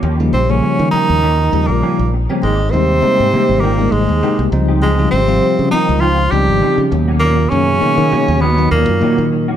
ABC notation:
X:1
M:4/4
L:1/16
Q:"Swing 16ths" 1/4=100
K:Ebmix
V:1 name="Clean electric guitar"
[F,B,DG] z4 z [F,B,DG] z [F,B,DG] z3 [F,B,DG] z2 [B,DG] | [E,B,CG] z4 z [E,B,CG] z [E,B,CG] z3 [E,B,CG] z2 [CEG] | [F,CEG] z4 z [F,CEG] z [F,CEG] z3 [F,CEG] z2 [^A,^C^F] | [^D,^A,^C^F] z4 z [D,A,CF] z [D,A,CF] z3 [D,A,CF] z2 [A,CF] |]
V:2 name="Tenor saxophone"
z2 C D3 E4- E B,3 z2 | A,2 C6 B,2 A,4 z2 | A,2 C4 E2 F2 G4 z2 | ^A,2 ^C6 =B,2 A,4 z2 |]
V:3 name="Tine electric piano" clef=bass
z [D,F,G,B,E] z [D,F,G,B,D]4- [D,F,G,B,D] z2 [D,F,G,B,E]3 z2 [D,F,G,B,C] | z2 [C,G,A,B,E] z [C,G,A,B,E] z [C,G,A,B,E]2 z [C,G,A,B,E]2 z [C,A,B,EG]2 [D,F,G,CE]2 | z [D,F,G,CF] z [C,F,G,CF]4- [C,F,G,CF] z2 [D,F,G,CE]3 z [=B,,^D,^F,^A,^C]2- | [=B,,^D,^F,^A,^C] z [B,,D,F,A,C] z [B,,D,F,A,^D] z [B,,D,F,A,D]2 z [B,,D,F,A,D]2 z [^A,,D,F,A,D]3 z |]
V:4 name="Trombone" clef=bass
z2 C, D,3 E,4- E, B,,3 z2 | A,,2 C,6 B,,2 A,,4 z2 | A,,2 C,4 E,2 F,2 G,4 z2 | ^A,,2 ^C,6 =B,,2 A,,4 z2 |]
V:5 name="Fingered electric bass" clef=bass
E,,2 B,,,2 z E, z E,,3 E,, B,,, z B,,,2 z | A,,,2 E,,2 z A,, z A,,,3 A,,, E,, z C,, D,,2- | D,,2 A,,,2 z D, z D,,3 D,, A,,, z D, ^D,,2- | ^D,,2 ^F,,2 z ^D, z D,,3 D,, F,, z D,2 z |]